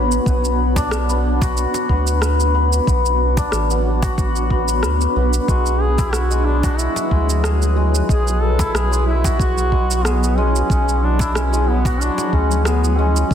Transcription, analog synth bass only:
0.00 0.19 A1 medium
0.26 1.66 B1 loud
1.89 2.80 D2 medium
2.87 3.46 B1 loud
3.52 4.85 A1 medium
4.83 5.07 D2 medium
5.16 5.40 B1 medium
5.48 6.88 B1 loud
7.11 8.02 D2 medium
8.09 8.67 B1 loud
8.74 10.63 B1 medium
10.70 12.10 B1 loud
12.33 13.24 D2 medium
13.31 13.34 B1 loud

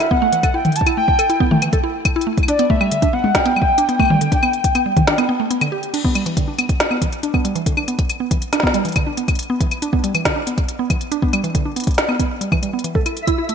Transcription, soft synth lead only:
0.00 0.11 E5 loud
0.11 0.56 F#5 loud
0.54 0.77 G5 loud
0.76 0.97 A5 loud
0.98 1.58 G5 loud
2.49 2.69 D5 loud
2.70 3.15 E5 loud
3.13 3.36 F#5 loud
3.35 5.51 G5 loud

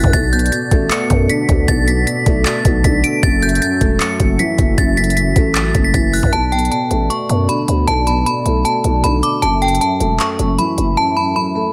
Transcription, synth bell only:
0.00 0.12 F#6 medium
0.13 0.32 A6 loud
0.33 0.51 G6 medium
0.52 0.88 A6 medium
0.91 1.27 C#7 medium
1.30 1.66 B6 medium
1.68 1.87 A6 loud
1.88 2.06 B6 medium
2.07 2.43 B6 medium
2.46 2.82 A6 medium
2.84 3.03 B6 medium
3.04 3.22 D7 medium
3.23 3.41 A6 loud
3.43 3.61 G6 medium
3.62 3.98 A6 medium
4.01 4.37 C#7 medium
4.39 4.76 B6 medium
4.78 4.96 A6 loud
4.97 5.16 B6 medium
5.17 5.53 B6 medium
5.55 5.83 A6 medium
5.84 5.94 B6 medium
5.94 6.12 A6 medium
6.14 6.32 F#6 medium
6.33 6.51 A5 loud
6.52 6.70 G5 medium
6.71 7.08 A5 medium
7.10 7.46 C#6 medium
7.49 7.85 B5 medium
7.88 8.06 A5 loud
8.07 8.25 B5 medium
8.26 8.63 B5 medium
8.65 9.01 A5 medium
9.04 9.22 B5 medium
9.23 9.41 D6 medium
9.42 9.61 A5 loud
9.62 9.80 G5 medium
9.81 10.17 A5 medium
10.20 10.56 C#6 medium
10.59 10.95 B5 medium
10.97 11.16 A5 loud
11.17 11.35 B5 medium
11.36 11.72 B5 medium

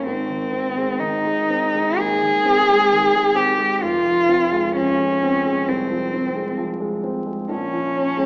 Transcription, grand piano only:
0.07 1.94 G#1 soft
0.29 0.67 D#3 soft
0.53 0.90 C4 soft
0.77 1.14 G#3 soft
1.00 1.39 D#3 soft
1.25 1.64 G#3 soft
1.50 1.89 C4 soft
1.75 2.13 G#3 soft
1.99 2.36 D#2 soft
2.22 2.59 D#3 soft
2.45 2.82 C4 soft
2.69 3.05 G#3 soft
2.91 3.27 D#3 soft
3.14 3.50 G#3 soft
3.35 3.72 C4 soft
3.58 3.82 G#3 soft
3.82 5.63 F1 soft
4.06 4.43 F3 soft
4.28 4.66 C4 soft
4.52 4.89 G#3 soft
4.75 5.12 F3 soft
4.98 5.35 G#3 soft
5.23 5.59 C4 soft
5.45 5.81 G#3 soft
5.68 6.04 C2 soft
5.91 6.26 F3 soft
6.14 6.49 C4 soft
6.35 6.72 G#3 soft
6.57 6.95 F3 soft
6.80 7.18 G#3 soft
7.04 7.41 C4 soft
7.26 7.50 G#3 soft
7.49 8.26 A#1 soft
7.73 8.10 F3 soft
7.96 8.26 C#4 soft
8.17 8.26 G#3 soft

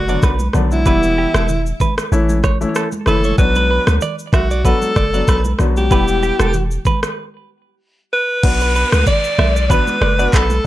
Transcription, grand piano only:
0.08 0.31 D3 medium
0.08 0.31 F#3 medium
0.08 0.31 B3 medium
0.08 0.31 D4 medium
0.54 0.78 D3 medium
0.54 0.79 F#3 medium
0.54 0.79 B3 medium
0.54 0.79 D4 medium
0.85 1.44 E3 medium
0.85 1.44 G3 medium
0.85 1.44 B3 medium
0.85 1.45 E4 loud
2.12 2.36 E3 medium
2.12 2.36 A3 medium
2.12 2.37 C#4 medium
2.12 2.37 E4 loud
2.61 2.84 E3 medium
2.61 2.84 A3 medium
2.61 2.84 C#4 medium
2.61 2.84 E4 medium
3.06 3.31 E3 medium
3.06 3.31 A3 medium
3.06 3.31 C#4 medium
3.06 3.31 E4 medium
3.38 3.97 F#3 medium
3.38 3.97 B3 medium
3.38 3.97 D4 medium
3.38 3.97 F#4 loud
4.64 4.89 F#3 medium
4.64 4.89 B3 medium
4.64 4.89 D4 medium
4.64 4.89 F#4 loud
5.13 5.36 F#3 medium
5.13 5.36 B3 medium
5.13 5.37 D4 medium
5.13 5.37 F#4 medium
5.59 5.84 F#3 medium
5.59 5.84 B3 medium
5.59 5.84 D4 medium
5.59 5.84 F#4 medium
5.91 6.49 G3 loud
5.91 6.50 B3 medium
5.91 6.50 E4 medium
5.91 6.50 G4 loud
8.43 9.02 B3 medium
8.43 9.02 D4 medium
8.43 9.02 F#4 medium
8.43 9.02 B4 loud
9.70 9.94 B3 medium
9.70 9.94 D4 medium
9.70 9.94 F#4 medium
9.70 9.95 B4 loud
10.19 10.42 B3 medium
10.19 10.42 D4 medium
10.19 10.42 F#4 medium
10.19 10.42 B4 medium

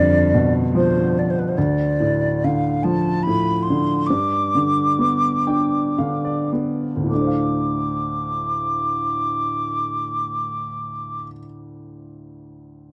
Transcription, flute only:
0.00 0.53 D5 medium
0.76 1.20 C5 medium
1.18 1.31 D5 medium
1.30 1.40 C5 medium
1.39 1.50 B4 soft
1.48 1.59 C5 soft
1.57 2.46 D5 medium
2.44 2.85 F5 medium
2.83 3.24 A5 medium
3.23 3.64 B5 medium
3.62 4.08 C6 medium
4.06 6.50 D6 medium
7.09 11.27 D6 medium

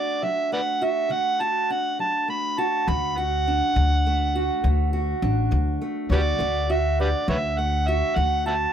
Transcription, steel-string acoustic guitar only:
0.00 0.52 A3 medium
0.00 1.70 D4 medium
0.00 0.81 F#4 medium
0.23 0.76 F#3 medium
0.52 1.10 A3 medium
0.82 1.40 F#4 medium
1.09 1.63 D3 medium
1.09 2.28 A3 medium
1.40 2.58 F#4 medium
1.70 3.47 D4 medium
1.99 2.52 F#3 medium
2.28 2.88 A3 medium
2.58 3.17 F#4 medium
2.88 3.41 D3 medium
2.88 4.06 A3 medium
3.18 4.35 F#4 medium
3.48 5.21 D4 medium
3.76 4.29 F#3 medium
4.07 4.65 A3 medium
4.35 4.92 F#4 medium
4.64 5.17 D3 medium
4.64 5.81 A3 soft
4.93 6.11 F#4 medium
5.22 6.37 D4 medium
5.51 6.05 F#3 medium
5.82 6.40 A3 medium
6.12 6.68 F#4 medium
6.40 6.93 D3 medium
6.40 7.58 A3 medium
6.70 7.87 F#4 medium
7.00 8.73 D4 medium
7.28 7.81 F#3 medium
7.58 8.17 A3 medium
7.88 8.45 F#4 medium
8.16 8.69 D3 medium
8.16 8.73 A3 medium
8.46 8.73 F#4 medium

